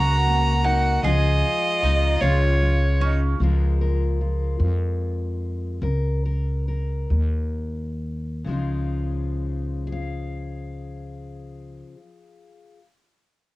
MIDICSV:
0, 0, Header, 1, 6, 480
1, 0, Start_track
1, 0, Key_signature, -5, "major"
1, 0, Tempo, 789474
1, 628, Time_signature, 6, 3, 24, 8
1, 2550, Tempo, 825309
1, 3990, Tempo, 900901
1, 4950, Tempo, 941915
1, 7542, End_track
2, 0, Start_track
2, 0, Title_t, "Fiddle"
2, 0, Program_c, 0, 110
2, 0, Note_on_c, 0, 82, 96
2, 392, Note_on_c, 0, 78, 86
2, 401, Note_off_c, 0, 82, 0
2, 626, Note_off_c, 0, 78, 0
2, 630, Note_on_c, 0, 75, 101
2, 1341, Note_on_c, 0, 73, 81
2, 1350, Note_off_c, 0, 75, 0
2, 1884, Note_off_c, 0, 73, 0
2, 7542, End_track
3, 0, Start_track
3, 0, Title_t, "Harmonica"
3, 0, Program_c, 1, 22
3, 0, Note_on_c, 1, 66, 101
3, 393, Note_off_c, 1, 66, 0
3, 402, Note_on_c, 1, 66, 83
3, 630, Note_on_c, 1, 65, 96
3, 639, Note_off_c, 1, 66, 0
3, 1746, Note_off_c, 1, 65, 0
3, 1850, Note_on_c, 1, 63, 61
3, 1947, Note_off_c, 1, 63, 0
3, 7542, End_track
4, 0, Start_track
4, 0, Title_t, "Mandolin"
4, 0, Program_c, 2, 25
4, 0, Note_on_c, 2, 66, 79
4, 378, Note_off_c, 2, 66, 0
4, 391, Note_on_c, 2, 63, 65
4, 625, Note_off_c, 2, 63, 0
4, 634, Note_on_c, 2, 68, 84
4, 1101, Note_off_c, 2, 68, 0
4, 1115, Note_on_c, 2, 63, 69
4, 1346, Note_off_c, 2, 63, 0
4, 1351, Note_on_c, 2, 65, 70
4, 1819, Note_off_c, 2, 65, 0
4, 1831, Note_on_c, 2, 61, 65
4, 2064, Note_off_c, 2, 61, 0
4, 7542, End_track
5, 0, Start_track
5, 0, Title_t, "Steel-string acoustic guitar"
5, 0, Program_c, 3, 25
5, 0, Note_on_c, 3, 54, 63
5, 0, Note_on_c, 3, 58, 57
5, 0, Note_on_c, 3, 70, 62
5, 155, Note_off_c, 3, 58, 0
5, 162, Note_on_c, 3, 58, 52
5, 348, Note_off_c, 3, 54, 0
5, 391, Note_off_c, 3, 70, 0
5, 398, Note_on_c, 3, 70, 62
5, 604, Note_off_c, 3, 70, 0
5, 606, Note_off_c, 3, 58, 0
5, 634, Note_on_c, 3, 49, 75
5, 637, Note_on_c, 3, 53, 59
5, 642, Note_on_c, 3, 56, 60
5, 644, Note_on_c, 3, 63, 59
5, 653, Note_on_c, 3, 65, 68
5, 1062, Note_off_c, 3, 49, 0
5, 1115, Note_off_c, 3, 63, 0
5, 1125, Note_on_c, 3, 63, 56
5, 1348, Note_off_c, 3, 53, 0
5, 1352, Note_off_c, 3, 65, 0
5, 1355, Note_on_c, 3, 53, 58
5, 1359, Note_on_c, 3, 65, 60
5, 1589, Note_off_c, 3, 56, 0
5, 1596, Note_on_c, 3, 56, 57
5, 1783, Note_off_c, 3, 53, 0
5, 1818, Note_off_c, 3, 63, 0
5, 1825, Note_on_c, 3, 63, 54
5, 2037, Note_off_c, 3, 63, 0
5, 2068, Note_on_c, 3, 49, 66
5, 2071, Note_off_c, 3, 56, 0
5, 2074, Note_on_c, 3, 53, 55
5, 2077, Note_off_c, 3, 65, 0
5, 2078, Note_on_c, 3, 56, 56
5, 2084, Note_on_c, 3, 65, 57
5, 2087, Note_on_c, 3, 70, 63
5, 2314, Note_off_c, 3, 70, 0
5, 2317, Note_on_c, 3, 70, 54
5, 2501, Note_off_c, 3, 49, 0
5, 2552, Note_off_c, 3, 65, 0
5, 2559, Note_on_c, 3, 65, 50
5, 2775, Note_off_c, 3, 53, 0
5, 2782, Note_on_c, 3, 53, 60
5, 3207, Note_off_c, 3, 53, 0
5, 3471, Note_off_c, 3, 70, 0
5, 3472, Note_off_c, 3, 65, 0
5, 3494, Note_on_c, 3, 49, 65
5, 3500, Note_on_c, 3, 70, 58
5, 3741, Note_off_c, 3, 70, 0
5, 3748, Note_on_c, 3, 70, 48
5, 3938, Note_off_c, 3, 49, 0
5, 3988, Note_off_c, 3, 70, 0
5, 3995, Note_on_c, 3, 70, 52
5, 4214, Note_off_c, 3, 56, 0
5, 4220, Note_on_c, 3, 56, 52
5, 4651, Note_off_c, 3, 56, 0
5, 4921, Note_off_c, 3, 70, 0
5, 4936, Note_on_c, 3, 49, 54
5, 4950, Note_on_c, 3, 53, 49
5, 4958, Note_on_c, 3, 56, 47
5, 4970, Note_on_c, 3, 63, 47
5, 4978, Note_on_c, 3, 65, 42
5, 5660, Note_off_c, 3, 56, 0
5, 5662, Note_on_c, 3, 68, 56
5, 5687, Note_off_c, 3, 65, 0
5, 5689, Note_on_c, 3, 77, 52
5, 6720, Note_off_c, 3, 49, 0
5, 6734, Note_off_c, 3, 53, 0
5, 6754, Note_off_c, 3, 63, 0
5, 7149, Note_off_c, 3, 68, 0
5, 7162, Note_off_c, 3, 77, 0
5, 7542, End_track
6, 0, Start_track
6, 0, Title_t, "Upright bass"
6, 0, Program_c, 4, 32
6, 0, Note_on_c, 4, 37, 90
6, 609, Note_off_c, 4, 37, 0
6, 629, Note_on_c, 4, 37, 99
6, 856, Note_off_c, 4, 37, 0
6, 1111, Note_on_c, 4, 37, 75
6, 1337, Note_off_c, 4, 37, 0
6, 1346, Note_on_c, 4, 37, 93
6, 2041, Note_off_c, 4, 37, 0
6, 2065, Note_on_c, 4, 37, 80
6, 2758, Note_off_c, 4, 37, 0
6, 2783, Note_on_c, 4, 41, 86
6, 3473, Note_off_c, 4, 41, 0
6, 3494, Note_on_c, 4, 37, 78
6, 4199, Note_off_c, 4, 37, 0
6, 4220, Note_on_c, 4, 39, 79
6, 4926, Note_off_c, 4, 39, 0
6, 4945, Note_on_c, 4, 37, 73
6, 6652, Note_off_c, 4, 37, 0
6, 7542, End_track
0, 0, End_of_file